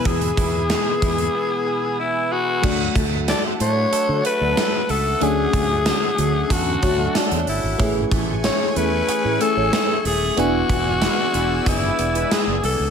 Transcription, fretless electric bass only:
X:1
M:4/4
L:1/16
Q:1/4=93
K:Dlyd
V:1 name="Fretless electric bass" clef=bass
E,,2 E,,3 z E,,2 z8 | D,,2 D,,3 z A,,2 z D, z D,, z2 C,,2 | D,,2 D,,3 z D,,2 E,,2 D,,2 z E,, =G,,, ^G,,, | A,,,2 A,,,3 z E,,2 z A,, z A,,, z2 ^D,,,2 |
E,,,2 E,,,3 z E,,,2 F,,,2 E,,,2 z F,,, =C,, ^C,, |]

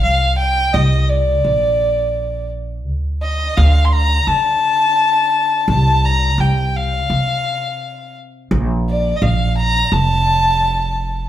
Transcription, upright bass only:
X:1
M:4/4
L:1/8
Q:1/4=85
K:Fmix
V:1 name="Upright bass" clef=bass
C,,2 C,,2 B,,,4 | D,,2 D,,2 D,4 | C,,2 C,,2 C,4 | B,,,2 B,,,2 F,,,4 |]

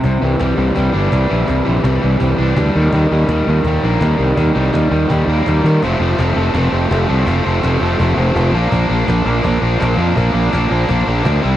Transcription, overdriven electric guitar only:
X:1
M:4/4
L:1/8
Q:1/4=166
K:F
V:1 name="Overdriven electric guitar" clef=bass
C, E, G, E, G, D G, E, | C, E, G, E, G, D G, _E, | _E, G, G, E, G, B, G, E, | _E, G, G, E, G, B, G, E, |
[F,,C,F,A,C] [F,,C,F,A,C] [F,,C,F,A,C] [F,,C,F,A,C] [F,,C,F,A,C] [F,,C,F,A,C] [F,,C,F,A,C] [F,,C,F,A,C] | [F,,C,F,A,C] [F,,C,F,A,C] [F,,C,F,A,C] [F,,C,F,A,C] [F,,C,F,A,C] [F,,C,F,A,C] [F,,C,F,A,C] [B,,F,B,D] | [B,,F,B,D] [B,,F,B,D] [B,,F,B,D] [B,,F,B,D] [B,,F,B,D] [B,,F,B,D] [B,,F,B,D] [B,,F,B,D] | [B,,F,B,D] [B,,F,B,D] [B,,F,B,D] [B,,F,B,D] [B,,F,B,D] [B,,F,B,D] [B,,F,B,D] [C,G,CE] |]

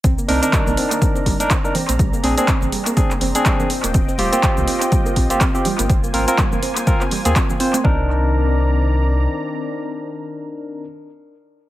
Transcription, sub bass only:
X:1
M:4/4
L:1/16
Q:"Swing 16ths" 1/4=123
K:Cm
V:1 name="Sub bass" clef=bass
C,, z C,, z2 B,,, z4 G,,, z4 B,,, | B,,, z B,,, z2 A,,, z4 F,,, z4 E,,, | E,,, z E,,, z2 C,, z4 B,,, z4 G,,, | A,,, z A,,, z2 F,,, z4 z E,, z4 |
C,,12 z4 | z16 |]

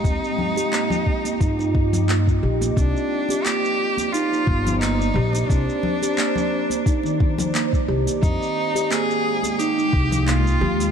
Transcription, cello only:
X:1
M:4/4
L:1/8
Q:"Swing 16ths" 1/4=88
K:Cm
V:1 name="Cello"
E6 z2 | D2 G2 F2 E2 | D6 z2 | E2 A2 G2 F2 |]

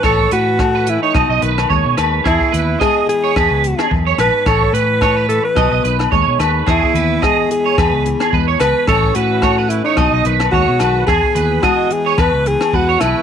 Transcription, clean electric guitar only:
X:1
M:4/4
L:1/16
Q:"Swing 16ths" 1/4=109
K:E
V:1 name="Clean electric guitar"
c2 B2 z B2 c d d B2 c2 B2 | G2 B2 d2 z c B2 z G z c B2 | c2 B2 c B2 z d d B2 c2 B2 | G2 B2 d2 z c B2 z G B c B2 |
c2 B2 c B2 c d d B2 c2 B2 | G2 B2 d2 z c B2 z2 B c B2 |]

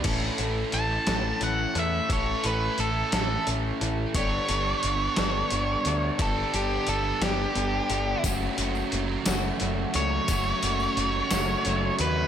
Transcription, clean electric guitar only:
X:1
M:6/8
L:1/8
Q:3/8=59
K:Amix
V:1 name="Clean electric guitar"
[E,A,CA] [E,A,CA] z [E,A,CA] [E,A,CA] [E,A,CA] | [E,A,CA] [E,A,CA] z [E,A,CA] [E,A,CA] [E,A,CA] | [G,B,DA] [G,B,DA] z [G,B,DA] [G,B,DA] [G,B,DA] | [G,B,DA] [G,B,DA] z [G,B,DA] [G,B,DA] [G,B,DA] |
[F,A,CF] [F,A,CF] z [F,A,CF] [F,A,CF] [F,A,CF] | [F,A,CF] [F,A,CF] z [F,A,CF] [F,A,CF] [F,A,CF] |]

